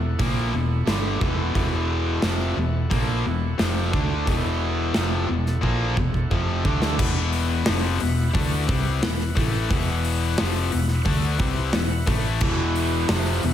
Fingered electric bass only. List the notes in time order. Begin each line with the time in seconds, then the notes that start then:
Already playing: E1
0.20 A#1
0.54 E1
0.86 G1
1.21 E1
1.55 E1
2.23 F1
2.57 E1
2.91 A#1
3.26 E1
3.60 F1
3.94 D2
4.27 E1
4.96 F1
5.30 E1
5.63 A#1
5.97 E1
6.31 F1
6.65 D2
6.99 E1
7.68 F1
8.02 E1
8.35 D2
8.69 C2
9.04 E1
9.37 A1
9.71 E1
10.40 F1
10.74 E1
11.06 D2
11.40 C2
11.75 E1
12.07 A1
12.41 E1
13.10 F1
13.43 E1